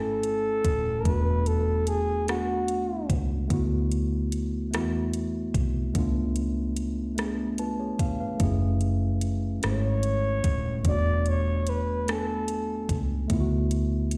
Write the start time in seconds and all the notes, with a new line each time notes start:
Already playing: G#1 A3 C#4 E4 G#4 A4 G#5
0.23 closed hi-hat
0.65 D#1, kick, closed hi-hat
1.00 A3 A#4
1.05 E1 B3 D4 F#4 B4, kick, closed hi-hat
1.46 A4, closed hi-hat
1.87 G#4, closed hi-hat
2.26 A3 B3 D4 F#4, cross-stick, closed hi-hat
2.32 F#4
2.68 closed hi-hat
3.10 C#2, kick, closed hi-hat
3.48 D2 A3 B3 E4, kick, closed hi-hat
3.54 F#4
3.92 closed hi-hat
4.32 closed hi-hat
4.71 E2 A3 B3 E4, cross-stick, closed hi-hat
4.77 F#4
5.14 closed hi-hat
5.54 C2, kick, closed hi-hat
5.93 C#2 A3 B3 D4, kick, closed hi-hat
5.99 F4
6.36 closed hi-hat
6.76 closed hi-hat
7.16 A3 B3, cross-stick, closed hi-hat
7.20 D4 G#4
7.58 F4 B4 A5, closed hi-hat
7.79 G#4 C#5
7.99 F1 F5, kick, closed hi-hat
8.20 B4 F5
8.38 F#1 A3 C#4 E4, kick, closed hi-hat
8.43 G#4
8.81 closed hi-hat
9.21 closed hi-hat
9.60 G#3 C#4 E4, cross-stick, closed hi-hat
9.64 G#1 A3 G#4 C#5
10.03 closed hi-hat
10.44 D#1, kick, closed hi-hat
10.83 E1 A3 B3 D4, kick, closed hi-hat
10.88 F#4 D5
11.26 C#5, closed hi-hat
11.67 B4, closed hi-hat
12.05 A3 B3 D4, cross-stick, closed hi-hat
12.10 A4 G#5
12.48 closed hi-hat
12.89 C#2, kick, closed hi-hat
13.28 D2 A3 B3 E4, kick, closed hi-hat
13.34 F4
13.40 F#4
13.71 closed hi-hat
14.11 closed hi-hat